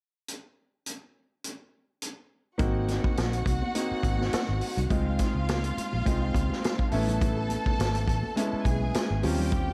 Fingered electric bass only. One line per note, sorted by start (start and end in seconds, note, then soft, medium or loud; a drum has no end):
2.60 2.98 G#1 medium
3.05 muted fingered electric bass stroke soft
3.18 3.43 A#1 medium
3.46 3.60 C2 medium
3.91 muted fingered electric bass stroke soft
4.04 4.29 G#1 medium
4.33 muted fingered electric bass stroke soft
4.49 4.60 G#1 medium
4.77 4.89 C2 medium
4.91 5.16 C#2 medium
5.35 5.71 C#2 medium
5.77 muted fingered electric bass stroke soft
5.93 6.05 A#1 medium
6.06 6.31 C2 medium
6.35 6.48 C#2 medium
6.93 7.56 A1 medium
7.67 muted fingered electric bass stroke soft
7.79 8.04 G#1 medium
8.08 8.21 A1 medium
8.53 muted fingered electric bass stroke soft
8.65 8.90 B1 medium
9.10 9.22 G#1 medium
9.24 9.73 D#2 medium